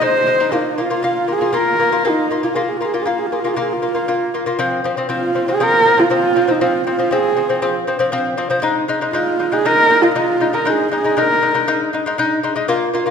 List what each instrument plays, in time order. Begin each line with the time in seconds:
0.01 lute G#3 D#4, horsehead fiddle C5
0.26 lute G#3 D#4
0.40 lute G#3 D#4
0.52 lute A#3 F4, horsehead fiddle D#4
0.78 lute A#3 F4, horsehead fiddle F4
0.90 lute A#3 F4
1.03 lute A#3 F4
1.28 lute A#3 F4
1.33 horsehead fiddle G#4
1.41 lute A#3 F4
1.53 lute A#3 F4
1.58 horsehead fiddle A#4
1.79 lute A#3 F4
1.92 lute A#3 F4
2.05 lute A#3 F4
2.09 horsehead fiddle D#4
2.31 lute A#3 F4
2.43 lute A#3 F4, horsehead fiddle F4
2.54 lute A#3 F4, horsehead fiddle G#4
2.62 horsehead fiddle F4
2.69 horsehead fiddle G#4
2.77 lute A#3, horsehead fiddle F4
2.82 lute F4, horsehead fiddle G#4
2.94 lute A#3 F4, horsehead fiddle F4
3.01 horsehead fiddle G#4
3.06 lute A#3 F4, horsehead fiddle F4
3.18 horsehead fiddle G#4
3.26 horsehead fiddle F4
3.32 lute A#3 F4, horsehead fiddle G#4
3.40 horsehead fiddle F4
3.44 lute A#3 F4, horsehead fiddle G#4
3.54 lute A#3 F4, horsehead fiddle F4
3.62 horsehead fiddle G#4
3.73 horsehead fiddle F4
3.82 lute A#3 F4
3.95 lute A#3 F4
4.08 lute A#3 F4
4.34 lute A#3 F4
4.46 lute A#3 F4
4.59 lute F3 C4
4.84 lute F3 C4
4.97 lute F3 C4
5.09 lute F3 C4
5.13 horsehead fiddle F4
5.35 lute F3 C4
5.48 lute F3 C4, horsehead fiddle G#4
5.60 lute F3 C4, horsehead fiddle A#4
5.85 lute F3 C4
5.97 lute F3 C4, horsehead fiddle F4
6.10 lute F3 C4, horsehead fiddle F4
6.36 lute F3 C4
6.48 lute F3 C4, horsehead fiddle D#4
6.61 lute F3 C4, horsehead fiddle F4
6.87 lute F3 C4, horsehead fiddle F4
6.99 lute F3 C4
7.11 lute F3 C4, horsehead fiddle G#4
7.37 lute F3 C4
7.49 lute F3 C4
7.62 lute F3 C4
7.87 lute F3 C4
7.99 lute F3 C4
8.12 lute F3 C4
8.37 lute F3 C4
8.50 lute F3 C4
8.62 lute G#3 D#4
8.88 lute G#3 D#4
9.01 lute G#3 D#4
9.13 lute G#3 D#4, horsehead fiddle F4
9.39 lute G#3 D#4
9.52 lute G#3 D#4, horsehead fiddle G#4
9.65 lute G#3 D#4, horsehead fiddle A#4
9.90 lute G#3 D#4
10.01 lute G#3 D#4, horsehead fiddle F4
10.15 lute G#3 D#4, horsehead fiddle F4
10.40 lute G#3 D#4
10.53 lute G#3 D#4, horsehead fiddle A#4
10.65 lute G#3 D#4, horsehead fiddle G#4
10.91 lute G#3 D#4, horsehead fiddle G#4
11.04 lute G#3 D#4
11.17 lute G#3 D#4, horsehead fiddle A#4
11.42 lute G#3 D#4
11.54 lute G#3 D#4
11.68 lute G#3 D#4
11.93 lute G#3 D#4
12.06 lute G#3 D#4
12.18 lute G#3 D#4
12.43 lute G#3 D#4
12.56 lute G#3 D#4
12.68 lute A#3 F4
12.94 lute A#3 F4
13.06 lute A#3 F4